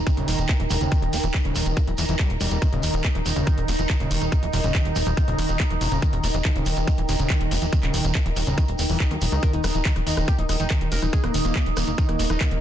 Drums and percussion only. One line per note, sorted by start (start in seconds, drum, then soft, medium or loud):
0.07 kick loud
0.07 closed hi-hat medium
0.07 shekere soft
0.17 closed hi-hat soft
0.28 open hi-hat loud
0.28 shekere loud
0.38 closed hi-hat medium
0.38 shekere medium
0.49 kick loud
0.49 clap loud
0.49 closed hi-hat medium
0.60 closed hi-hat medium
0.70 open hi-hat loud
0.70 shekere loud
0.81 closed hi-hat medium
0.81 shekere medium
0.92 kick loud
0.92 closed hi-hat medium
0.92 shekere soft
1.02 closed hi-hat soft
1.13 open hi-hat loud
1.13 shekere loud
1.24 closed hi-hat soft
1.24 shekere medium
1.34 kick loud
1.34 clap loud
1.34 closed hi-hat medium
1.45 closed hi-hat soft
1.55 open hi-hat loud
1.55 shekere loud
1.66 closed hi-hat soft
1.66 shekere soft
1.76 kick loud
1.76 closed hi-hat medium
1.76 shekere soft
1.87 closed hi-hat soft
1.98 open hi-hat loud
1.98 shekere loud
2.09 closed hi-hat medium
2.09 shekere soft
2.19 kick loud
2.19 clap loud
2.19 closed hi-hat medium
2.30 closed hi-hat medium
2.41 open hi-hat loud
2.41 shekere medium
2.50 closed hi-hat medium
2.50 shekere medium
2.62 kick loud
2.62 closed hi-hat medium
2.62 shekere soft
2.73 closed hi-hat medium
2.83 open hi-hat loud
2.83 shekere loud
2.94 closed hi-hat medium
2.94 shekere medium
3.04 kick loud
3.04 clap loud
3.04 closed hi-hat medium
3.15 closed hi-hat medium
3.26 open hi-hat loud
3.26 shekere loud
3.36 closed hi-hat soft
3.36 shekere medium
3.46 kick loud
3.46 closed hi-hat medium
3.46 shekere soft
3.58 closed hi-hat medium
3.68 open hi-hat medium
3.68 shekere loud
3.79 closed hi-hat medium
3.79 shekere medium
3.90 kick loud
3.90 clap loud
3.90 closed hi-hat medium
4.00 closed hi-hat medium
4.11 open hi-hat loud
4.11 shekere medium
4.21 closed hi-hat soft
4.21 shekere medium
4.32 kick loud
4.32 closed hi-hat medium
4.32 shekere soft
4.43 closed hi-hat medium
4.53 open hi-hat loud
4.53 shekere medium
4.64 closed hi-hat medium
4.64 shekere soft
4.75 kick loud
4.75 clap loud
4.75 closed hi-hat medium
4.75 shekere soft
4.85 closed hi-hat medium
4.96 open hi-hat loud
4.96 shekere loud
5.07 closed hi-hat medium
5.07 shekere soft
5.17 kick loud
5.17 closed hi-hat medium
5.17 shekere soft
5.28 closed hi-hat medium
5.39 open hi-hat loud
5.39 shekere medium
5.49 closed hi-hat medium
5.49 shekere soft
5.60 kick loud
5.60 clap loud
5.60 closed hi-hat medium
5.70 closed hi-hat medium
5.81 open hi-hat loud
5.81 shekere medium
5.92 closed hi-hat medium
5.92 shekere medium
6.02 kick loud
6.02 closed hi-hat medium
6.13 closed hi-hat medium
6.24 open hi-hat loud
6.24 shekere loud
6.34 closed hi-hat medium
6.34 shekere soft
6.45 kick loud
6.45 clap loud
6.45 closed hi-hat medium
6.56 closed hi-hat medium
6.66 open hi-hat loud
6.66 shekere medium
6.77 closed hi-hat medium
6.77 shekere soft
6.87 kick loud
6.87 closed hi-hat medium
6.87 shekere soft
6.98 closed hi-hat medium
7.09 open hi-hat medium
7.09 shekere medium
7.19 closed hi-hat medium
7.19 shekere medium
7.30 kick loud
7.30 clap loud
7.30 closed hi-hat medium
7.41 closed hi-hat medium
7.51 open hi-hat loud
7.51 shekere medium
7.62 closed hi-hat medium
7.62 shekere medium
7.72 kick loud
7.72 closed hi-hat medium
7.72 shekere soft
7.83 clap soft
7.83 closed hi-hat medium
7.94 open hi-hat loud
7.94 shekere medium
8.04 closed hi-hat medium
8.04 shekere medium
8.15 kick loud
8.15 clap loud
8.15 closed hi-hat medium
8.15 shekere soft
8.26 closed hi-hat medium
8.36 open hi-hat loud
8.36 shekere loud
8.46 closed hi-hat medium
8.46 shekere medium
8.58 kick loud
8.58 closed hi-hat medium
8.58 shekere soft
8.68 closed hi-hat medium
8.79 open hi-hat loud
8.79 shekere medium
8.89 open hi-hat medium
8.89 shekere medium
9.00 kick loud
9.00 clap loud
9.11 closed hi-hat medium
9.22 open hi-hat loud
9.22 shekere medium
9.32 closed hi-hat medium
9.32 shekere medium
9.42 kick loud
9.42 cross-stick soft
9.42 closed hi-hat medium
9.42 shekere soft
9.53 closed hi-hat medium
9.64 cross-stick medium
9.64 open hi-hat loud
9.64 shekere medium
9.75 closed hi-hat medium
9.75 shekere medium
9.85 kick loud
9.85 clap loud
9.85 closed hi-hat medium
9.96 cross-stick soft
9.96 closed hi-hat medium
10.07 open hi-hat loud
10.07 shekere loud
10.17 cross-stick medium
10.17 closed hi-hat medium
10.17 shekere medium
10.28 kick loud
10.28 closed hi-hat medium
10.28 shekere soft
10.39 closed hi-hat medium
10.49 cross-stick soft
10.49 open hi-hat loud
10.49 shekere loud
10.60 closed hi-hat medium
10.60 shekere soft
10.70 kick loud
10.70 cross-stick medium
10.70 clap loud
10.70 closed hi-hat medium
10.81 closed hi-hat medium
10.92 open hi-hat loud
10.92 shekere medium
11.02 cross-stick soft
11.02 closed hi-hat medium
11.02 shekere soft
11.13 kick loud
11.13 closed hi-hat medium
11.24 cross-stick medium
11.24 closed hi-hat medium
11.34 open hi-hat loud
11.34 shekere loud
11.45 closed hi-hat medium
11.45 shekere medium
11.56 kick loud
11.56 cross-stick soft
11.56 clap loud
11.56 closed hi-hat medium
11.66 closed hi-hat medium
11.77 cross-stick medium
11.77 open hi-hat loud
11.77 shekere loud
11.87 closed hi-hat medium
11.87 shekere medium
11.98 kick loud
11.98 closed hi-hat medium
11.98 shekere soft
12.09 cross-stick soft
12.09 closed hi-hat medium
12.19 open hi-hat loud
12.19 shekere medium
12.30 cross-stick medium
12.30 closed hi-hat medium
12.30 shekere soft
12.41 kick loud
12.41 clap loud
12.41 closed hi-hat medium
12.51 closed hi-hat medium